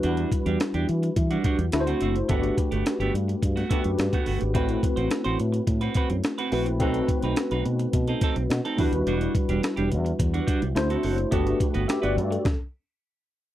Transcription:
<<
  \new Staff \with { instrumentName = "Tine electric piano" } { \time 4/4 \key g \major \tempo 4 = 106 << { r1 | r1 | r1 | r1 |
r1 | r4 <g' e''>16 <fis' d''>8 a'8 r4. r16 | } \\ { <g d' e' fis' b'>2. <a d' e' fis' b' c''>4 | <a d' fis' g' b'>2~ <a d' fis' g' b'>8 <a d' fis' g' b'>4. | <a c' e' fis' b'>2.~ <a c' e' fis' b'>8 <a c' e' fis' b'>8 | <a c' dis' fis' b'>2.~ <a c' dis' fis' b'>8 <g d' e' fis' b'>8~ |
<g d' e' fis' b'>2. <a d' e' fis' c''>4 | <a d' fis' g' b'>2 r2 | } >> }
  \new Staff \with { instrumentName = "Clean electric guitar" } { \time 4/4 \key g \major <g d' fis'>8 r16 <g d' g'>16 r16 <g d' g'>16 r8. <g d' fis'>16 <g d' fis'>16 r8 <a c' fis'>16 <a c' fis'>16 r16 | <a b fis'>8 r16 <a b g'>16 r16 <a b g'>16 r8. <a b fis'>16 <a b fis'>16 r8 <a b fis'>16 <a b fis'>16 r16 | <c' fis' b'>8 r16 <c' fis' c''>16 r16 <c' fis' c''>16 r8. <c' fis' b'>16 <c' fis' b'>16 r8 <c' fis' b'>16 <c' fis' b'>16 r16 | <c' dis' a'>8 r16 <c' dis' b'>16 r16 <c' dis' b'>16 r8. <c' dis' a'>16 <c' dis' a'>16 r8 <c' dis' a'>16 <g d' fis'>16 r16 |
<g d' fis'>8 r16 <g d' g'>16 r16 <g d' g'>16 r8. <g d' fis'>16 <g d' fis'>16 r8 <c' fis' a'>16 <c' fis' a'>16 r16 | <b fis' a'>8 r16 <b fis' b'>16 r16 <b fis' b'>16 r2 r8 | }
  \new Staff \with { instrumentName = "Fingered electric bass" } { \clef bass \time 4/4 \key g \major e,8 r16 e,16 r16 e,16 e8 e8 r16 e,16 d,8 fis,,8 | g,,8 r16 g,,16 r16 g,,16 g,8 g,8 r16 fis,16 g,16 r16 g,,16 gis,,16 | a,,8 r16 a,,16 r16 a,,16 a,8 a,8 r16 fis,16 r8 bes,,8 | b,,8 r16 b,,16 r16 b,,16 b,8 b,8 r16 b,,16 b,16 r16 e,16 dis,16 |
e,,8 r16 e,,16 r16 e,,16 e,8 e,8 r16 c,16 d,8 fis,,8 | g,,8 r16 g,,16 r16 g,,16 g,8 r2 | }
  \new DrumStaff \with { instrumentName = "Drums" } \drummode { \time 4/4 hh16 hh16 <hh bd>16 hh16 <hh sn>16 hh16 hh16 hh16 <hh bd>16 hh16 <hh bd>16 hh16 <hh sn>16 hh16 hh16 hh16 | <hh bd>16 hh16 <hh bd>16 hh16 <hh sn>16 hh16 hh16 hh16 <hh bd>16 <hh sn>16 <hh bd>16 hh16 <hh sn>16 <hh bd>16 hho16 hh16 | <hh bd>16 hh16 <hh bd>16 hh16 <hh sn>16 hh16 hh16 hh16 <hh bd>16 hh16 <hh bd>16 hh16 <hh sn>16 hh16 hho16 hh16 | <hh bd>16 hh16 <hh bd>16 hh16 <hh sn>16 hh16 hh16 hh16 <hh bd>16 hh16 <hh bd>16 hh16 <hh sn>16 hh16 <hho bd>16 hh16 |
hh16 hh16 <hh bd>16 hh16 <hh sn>16 hh16 hh16 hh16 <hh bd>16 hh16 <hh bd>16 hh16 <hh sn>16 hh16 hho16 hh16 | <hh bd>16 hh16 <hh bd>16 hh16 <hh sn>16 hh16 hh16 hh16 <bd sn>4 r4 | }
>>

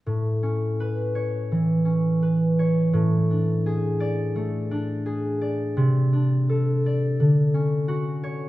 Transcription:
\new Staff \with { instrumentName = "Harp" } { \time 4/4 \key a \major \tempo 4 = 84 << { r4. cis''2~ cis''8~ | cis''4. d''2~ d''8~ | d''4. d''2 cis''8 | } \\ { a,8 cis'8 b'4 e8 cis'8 b'8 cis''8 | a,8 d'8 gis'4 a8 d'8 gis'8 d''8 | c8 d'8 a'4 d8 cis'8 fis'4 | } >> }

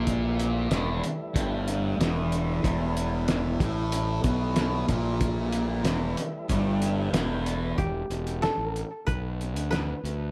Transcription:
<<
  \new Staff \with { instrumentName = "Koto" } { \time 4/4 \key e \minor \tempo 4 = 93 r1 | r1 | r1 | g'4 a'4 b'4 b'4 | }
  \new Staff \with { instrumentName = "Tonewheel organ" } { \clef bass \time 4/4 \key e \minor <e g a e'>1~ | <e g a e'>1~ | <e g a e'>1 | r1 | }
  \new Staff \with { instrumentName = "Distorted electric guitar" } { \clef bass \time 4/4 \key e \minor ais,4 e,8 r8 g,4 e,4 | e,4. a,4 b,4 ais,8~ | ais,4 e,8 r8 g,4 e,4 | r1 | }
  \new Staff \with { instrumentName = "Fingered electric bass" } { \clef bass \time 4/4 \key e \minor ais,,4 e,,8 r8 g,,4 e,,4 | e,,4. a,,4 b,,4 ais,,8~ | ais,,4 e,,8 r8 g,,4 e,,4 | e,,8 e,,8. a,,8 r16 b,,8. d,8. d,8 | }
  \new DrumStaff \with { instrumentName = "Drums" } \drummode { \time 4/4 <hh bd>8 hh8 <hh sn>8 hh8 <hh bd>8 hh8 <hh sn>8 hh8 | <hh bd>8 hh8 <hh sn>8 <hh bd>8 hh8 <hh bd>8 <hh sn>8 <hh bd>8 | <hh bd>8 hh8 <hh sn>8 hh8 <hh bd>8 hh8 <hh sn>8 hh8 | <hh bd>8 hh16 hh16 <hh sn>8 hh8 <hh bd>8 hh16 hh16 <hh sn>8 hh8 | }
>>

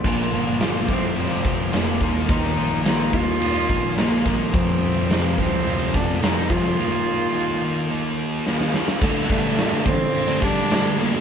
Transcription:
<<
  \new Staff \with { instrumentName = "Cello" } { \time 4/4 \key ees \lydian \tempo 4 = 107 bes4 r8 c'8 c'4 bes4 | ees'4 ees'8 f'4. bes4 | c'4. c'4 d'8 ees'8 f'8~ | f'2. r4 |
a8 a4 c'4 d'4 bes8 | }
  \new Staff \with { instrumentName = "Clean electric guitar" } { \time 4/4 \key ees \lydian <bes, f d' f'>8 <f d' f'>8 <bes, f a d' f'>8 <f a c' g'>8. <a c' g'>16 <f a c' g'>8 <f a c' g'>8 <ees bes ees' f'>16 <bes ees' f'>16 | <ees bes ees' f'>8 <ees bes ees' f'>8 <ees bes ees' f'>8 <ees bes ees' f'>8. <bes ees' f'>16 <ees bes ees' f'>8 <ees bes ees' f'>8 <ees bes ees' f'>16 <bes ees' f'>16 | r1 | r1 |
r1 | }
  \new Staff \with { instrumentName = "Distorted electric guitar" } { \clef bass \time 4/4 \key ees \lydian <bes, f bes>4 <bes, f bes>8 <f, c f>8 <f, c f>4 <f, c f>8 <ees bes ees'>8 | <ees bes ees'>4 <ees bes ees'>8 <ees bes ees'>8 <ees bes ees'>4 <ees bes ees'>8 <ees bes ees'>8 | <f, c f>4 <f, c f>8 <f, c f>8 <f, c f>4 <f, c f>8 <f, c f>8 | <ees bes ees'>4 <ees bes ees'>8 <ees bes ees'>8 <ees bes ees'>4 <ees bes ees'>8 <ees bes ees'>8 |
<d g a d'>8 <d g a d'>8 <d g a d'>16 <g a d'>8. r16 <g a d'>16 <d g a d'>8 <d g a d'>16 <g a d'>16 <d g a d'>16 <g a d'>16 | }
  \new Staff \with { instrumentName = "Picked electric bass" } { \clef bass \time 4/4 \key ees \lydian bes,,8 g,,4 f,,4 f,,4 ees,8 | ees,8 bes,,4 ees,4 bes,,4 bes,,8 | f,8 f,4 d,4 f,4 f8 | r1 |
d8 d4 d4 g4. | }
  \new DrumStaff \with { instrumentName = "Drums" } \drummode { \time 4/4 <cymc bd>8 cymr8 <cymr sn>8 <bd cymr>8 cymr8 <bd cymr>8 <cymr sn>8 <bd cymr>8 | <bd cymr>16 sn16 cymr8 <cymr sn>8 <bd cymr>8 cymr8 <bd cymr>8 <cymr sn>8 <bd cymr>8 | <bd cymr>8 cymr8 <cymr sn>8 <bd cymr>8 cymr8 <bd cymr>8 <cymr sn>8 <bd cymr>8 | r4 r4 r4 sn16 sn16 sn16 sn16 |
<cymc bd>8 <cymc bd>8 <cymc sn>8 <cymc bd>8 cymc8 <cymc bd>8 <cymc sn>8 cymc8 | }
>>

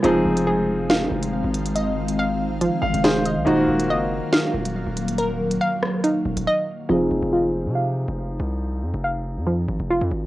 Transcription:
<<
  \new Staff \with { instrumentName = "Synth pluck" } { \time 4/4 \key f \phrygian \tempo 4 = 140 c''2 r2 | ees''2 r4 f''8 ees''8 | c''2 r2 | bes'1 |
r1 | r1 | }
  \new Staff \with { instrumentName = "Synth pluck" } { \time 4/4 \key f \phrygian f4 aes'4 f''2~ | f''4 f''4 f4 aes'4 | ees'4 ees''4 f''2~ | f''4 f''4 ees'4 ees''4 |
f4 f'4 f''2~ | f''4 f''4 f4 f'4 | }
  \new Staff \with { instrumentName = "Grand piano" } { \time 4/4 \key f \phrygian << { r1 | r2 r8 f''8 c''4 | r1 | r1 |
r1 | r1 | } \\ { <f c' ees' aes'>1~ | <f c' ees' aes'>1 | <ees bes f' ges'>1~ | <ees bes f' ges'>1 |
<f c' ees' aes'>1~ | <f c' ees' aes'>1 | } >> }
  \new Staff \with { instrumentName = "Ambient pad" } { \time 4/4 \key f \phrygian << { <ees f''>1~ | <ees f''>1~ | <ees f''>1~ | <ees f''>1 |
r1 | r1 | } \\ { <aes c'>1~ | <aes c'>1 | <ges bes>1~ | <ges bes>1 |
r1 | r1 | } >> }
  \new Staff \with { instrumentName = "808-style bass" } { \clef bass \time 4/4 \key f \phrygian f,,8 f,,2 f,,8. aes,,8.~ | aes,,2~ aes,,16 r16 aes,,16 f,,4 c,16 | ees,,8 ees,,8 ges,,8. r8. ees,,8. ees,,8.~ | ees,,4 r4. ees,,16 ees,,16 r4 |
f,,8 f,,16 f,,4 c4 f,,8. c,8~ | c,8 f,16 f,,4 f,8. aes,,16 f,,8 f,16 aes,,8 | }
  \new DrumStaff \with { instrumentName = "Drums" } \drummode { \time 4/4 hh8. hh16 r4 <hh sn>8. hh16 r8 hh16 hh16 | hh8. hh16 r4 hh8. hh16 <hh sn>8 hh8 | hh8. hh16 r4 <hh sn>8. hh16 r8 hh16 hh16 | hh8. hh16 r8 ss8 hh8. hh16 r4 |
r4 r4 r4 r4 | r4 r4 r4 r4 | }
>>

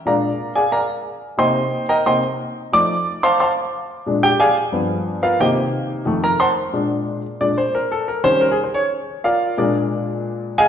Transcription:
<<
  \new Staff \with { instrumentName = "Grand piano" } { \time 4/4 \key bes \mixolydian \tempo 4 = 180 <bes' d'' f'' bes''>4. <aes' d'' f'' aes''>8 <bes' d'' f'' bes''>8 r4. | <c'' ees'' g'' c'''>4. <bes' ees'' g'' bes''>8 <c'' ees'' g'' c'''>8 r4. | <d'' d'''>4. <c'' f'' a'' c'''>8 <c'' f'' a'' c'''>8 r4. | r8 <g' g''>8 <aes' d'' f'' aes''>8 r2 <f' ais' b' f''>8 |
<g' c'' ees'' g''>8 r2 <bes' bes''>8 <c'' ges'' a'' c'''>8 r8 | r2 d''8 c''8 bes'8 a'8 | bes'8 c''8 \tuplet 3/2 { bes'8 aes'8 c''8 } des''8 r4 <f' bes' d'' f''>8~ | <f' bes' d'' f''>8 <d' aes' bes' d''>8 r2 r8 <aes' ees'' f'' aes''>8 | }
  \new Staff \with { instrumentName = "Grand piano" } { \clef bass \time 4/4 \key bes \mixolydian <bes, aes d'>8 r2. r8 | <c bes ees'>8 r4. <c bes ees'>8 r4. | <f a ees'>8 r2. r8 | <bes, aes d'>8 r4. <g, f b>4. r8 |
<c ees bes>2 <f, ees a>8 r4. | <bes, aes d'>4. r8 <bes, aes d'>8 r4. | r8 <ees g des'>8 r2. | r8 <bes, aes>2.~ <bes, aes>8 | }
>>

